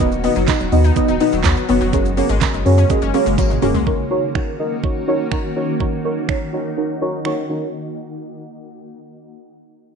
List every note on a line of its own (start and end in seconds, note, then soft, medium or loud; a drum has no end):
0.00 0.28 D#1 loud
0.00 1.89 D#3 medium
0.00 1.91 F#3 medium
0.00 0.18 B3 loud
0.00 1.91 B3 medium
0.00 0.18 D#4 loud
0.00 0.18 F#4 loud
0.00 3.83 F#4 medium
0.00 0.18 B4 loud
0.00 0.18 D#5 loud
0.00 kick loud
0.00 closed hi-hat medium
0.00 shaker medium
0.12 shaker medium
0.23 0.42 B3 medium
0.23 0.30 B3 medium
0.23 0.42 D#4 medium
0.23 0.42 F#4 medium
0.23 0.42 B4 medium
0.23 0.42 D#5 loud
0.23 open hi-hat medium
0.23 shaker medium
0.36 0.45 F#1 medium
0.36 0.42 F#3 medium
0.36 shaker medium
0.48 0.66 B3 medium
0.48 0.66 D#4 medium
0.48 0.66 F#4 medium
0.48 0.66 B4 medium
0.48 0.66 D#5 medium
0.48 kick loud
0.48 snare loud
0.48 clap loud
0.48 closed hi-hat medium
0.48 tambourine medium
0.48 shaker medium
0.60 0.69 D#1 loud
0.60 0.66 F#3 medium
0.60 shaker medium
0.72 0.91 D#2 loud
0.72 0.90 B3 loud
0.72 0.90 D#4 loud
0.72 0.90 F#4 loud
0.72 0.90 B4 loud
0.72 0.90 D#5 loud
0.72 open hi-hat medium
0.72 shaker medium
0.84 0.90 D#4 medium
0.84 shaker medium
0.96 1.02 F#3 medium
0.96 1.14 B3 loud
0.96 1.14 D#4 loud
0.96 1.14 F#4 loud
0.96 1.14 B4 loud
0.96 1.15 D#5 loud
0.96 kick loud
0.96 closed hi-hat medium
0.96 shaker medium
1.08 1.18 D#1 medium
1.08 1.15 D#4 loud
1.08 shaker medium
1.20 1.39 B3 medium
1.20 1.27 B3 medium
1.20 1.39 D#4 medium
1.20 1.39 F#4 medium
1.20 1.39 B4 medium
1.20 1.39 D#5 medium
1.20 open hi-hat medium
1.20 shaker medium
1.32 1.42 D#1 loud
1.32 1.39 F#3 medium
1.32 shaker medium
1.44 1.54 D#2 loud
1.44 1.63 B3 medium
1.44 1.51 B3 medium
1.44 1.63 D#4 medium
1.44 1.63 F#4 medium
1.44 1.63 B4 medium
1.44 1.63 C#5 loud
1.44 kick loud
1.44 snare loud
1.44 clap loud
1.44 closed hi-hat medium
1.44 tambourine loud
1.44 shaker medium
1.57 1.63 F#3 medium
1.57 shaker soft
1.69 1.78 F#1 loud
1.69 1.87 B3 medium
1.69 1.75 B3 medium
1.69 1.87 D#4 medium
1.69 1.87 F#4 medium
1.69 1.87 B4 medium
1.69 1.87 C#5 loud
1.69 open hi-hat medium
1.69 shaker medium
1.81 1.90 F1 medium
1.81 1.87 F#3 loud
1.81 shaker medium
1.93 2.21 F#1 loud
1.93 3.85 C#3 medium
1.93 3.85 G#3 medium
1.93 1.99 G#3 medium
1.93 3.85 A#3 medium
1.93 2.11 C#4 loud
1.93 2.11 F#4 loud
1.93 2.11 G#4 loud
1.93 2.11 A#4 loud
1.93 2.11 C#5 loud
1.93 kick loud
1.93 closed hi-hat medium
1.93 shaker medium
2.05 shaker medium
2.17 2.23 A#3 medium
2.17 2.35 C#4 loud
2.17 2.35 F#4 medium
2.17 2.35 G#4 medium
2.17 2.35 A#4 medium
2.17 2.36 C#5 loud
2.17 open hi-hat medium
2.17 shaker medium
2.29 2.39 G#1 medium
2.29 2.36 G#3 loud
2.29 shaker medium
2.41 2.59 C#4 medium
2.41 2.59 F#4 medium
2.41 2.60 G#4 medium
2.41 2.60 A#4 medium
2.41 2.60 C#5 loud
2.41 kick loud
2.41 snare medium
2.41 clap loud
2.41 closed hi-hat medium
2.41 tambourine medium
2.41 shaker medium
2.54 2.63 F#1 loud
2.54 2.60 G#3 medium
2.54 shaker medium
2.65 2.84 F#2 loud
2.65 2.84 C#4 loud
2.65 2.84 F#4 loud
2.65 2.84 G#4 loud
2.65 2.84 A#4 loud
2.65 2.84 C#5 loud
2.65 open hi-hat medium
2.65 shaker medium
2.78 2.84 C#4 medium
2.78 shaker medium
2.89 2.96 G#3 medium
2.89 3.08 C#4 loud
2.89 3.08 F#4 loud
2.89 3.08 G#4 loud
2.89 3.08 A#4 loud
2.89 3.08 D#5 loud
2.89 kick loud
2.89 closed hi-hat medium
2.89 shaker medium
3.02 3.11 F#1 loud
3.02 3.08 C#4 loud
3.02 shaker medium
3.14 3.20 A#3 medium
3.14 3.32 C#4 medium
3.14 3.32 F#4 medium
3.14 3.32 G#4 medium
3.14 3.32 A#4 medium
3.14 3.32 C#5 loud
3.14 open hi-hat medium
3.14 shaker medium
3.26 3.36 F#1 medium
3.26 3.32 G#3 medium
3.26 shaker medium
3.38 3.57 G#1 loud
3.38 3.44 A#3 loud
3.38 3.56 C#4 medium
3.38 3.56 F#4 medium
3.38 3.56 G#4 medium
3.38 3.56 A#4 medium
3.38 3.56 C#5 loud
3.38 kick loud
3.38 closed hi-hat medium
3.38 high tom medium
3.38 tambourine medium
3.38 shaker medium
3.50 3.56 G#3 medium
3.50 mid tom medium
3.50 shaker medium
3.62 3.72 D1 loud
3.62 3.69 A#3 medium
3.62 3.80 C#4 medium
3.62 3.80 F#4 medium
3.62 3.80 G#4 medium
3.62 3.80 A#4 medium
3.62 3.81 C#5 loud
3.62 mid tom loud
3.62 open hi-hat medium
3.62 shaker medium
3.74 3.81 G#3 medium
3.74 floor tom loud
3.74 shaker medium
3.86 7.70 D#3 medium
3.86 7.70 A#3 medium
3.86 5.78 C#4 medium
3.86 4.05 D#4 loud
3.86 4.05 F#4 loud
3.86 7.70 F#4 medium
3.86 4.05 A#4 medium
3.86 4.05 C#5 loud
3.86 kick loud
4.10 4.29 D#4 medium
4.10 4.29 F#4 medium
4.10 4.29 A#4 medium
4.10 4.29 C#5 loud
4.35 4.53 D#4 medium
4.35 4.53 F#4 medium
4.35 4.53 A#4 medium
4.35 4.53 C#5 medium
4.35 finger snap loud
4.35 kick loud
4.59 4.77 D#4 medium
4.59 4.77 F#4 medium
4.59 4.78 A#4 medium
4.59 4.78 D#5 loud
4.83 5.01 D#4 medium
4.83 5.02 F#4 medium
4.83 5.02 A#4 medium
4.83 5.02 C#5 medium
4.83 kick loud
5.07 5.26 D#4 loud
5.07 5.26 F#4 loud
5.07 5.26 A#4 loud
5.07 5.26 C#5 loud
5.32 5.50 D#4 loud
5.32 5.50 F#4 loud
5.32 5.50 A#4 loud
5.32 5.50 C#5 loud
5.32 finger snap loud
5.32 kick loud
5.56 5.74 D#4 medium
5.56 5.74 F#4 medium
5.56 5.74 A#4 medium
5.56 5.74 C#5 medium
5.80 5.98 D#4 loud
5.80 7.72 D#4 medium
5.80 5.98 F#4 loud
5.80 5.98 A#4 loud
5.80 5.98 C#5 loud
5.80 kick loud
6.04 6.22 D#4 medium
6.04 6.23 F#4 medium
6.04 6.23 A#4 medium
6.04 6.23 C#5 loud
6.28 6.47 D#4 medium
6.28 6.47 F#4 medium
6.28 6.47 A#4 medium
6.28 6.47 C#5 medium
6.28 finger snap loud
6.28 kick loud
6.53 6.71 D#4 medium
6.53 6.71 F#4 medium
6.53 6.71 A#4 medium
6.53 6.71 C#5 medium
6.77 6.95 D#4 medium
6.77 6.95 F#4 medium
6.77 6.95 A#4 medium
6.77 6.95 C#5 medium
7.01 7.19 D#4 loud
7.01 7.19 F#4 loud
7.01 7.19 A#4 loud
7.01 7.20 C#5 loud
7.25 7.43 D#4 loud
7.25 7.44 F#4 loud
7.25 7.44 A#4 loud
7.25 7.44 C#5 loud
7.25 finger snap loud
7.49 7.68 D#4 medium
7.49 7.68 F#4 medium
7.49 7.68 A#4 medium
7.49 7.68 C#5 medium